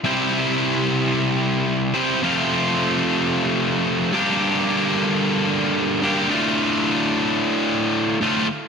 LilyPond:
\new Staff \with { instrumentName = "Distorted electric guitar" } { \time 4/4 \key d \minor \tempo 4 = 110 <c g c' e' g' c''>2.~ <c g c' e' g' c''>8 <c g c' e' g' c''>8 | <f, c f a c' f'>2.~ <f, c f a c' f'>8 <g, d g bes d' g'>8~ | <g, d g bes d' g'>2. <g, d g bes d' g'>8 <d, a, d a f'>8~ | <d, a, d a f'>2. <d, a, d a f'>8 r8 | }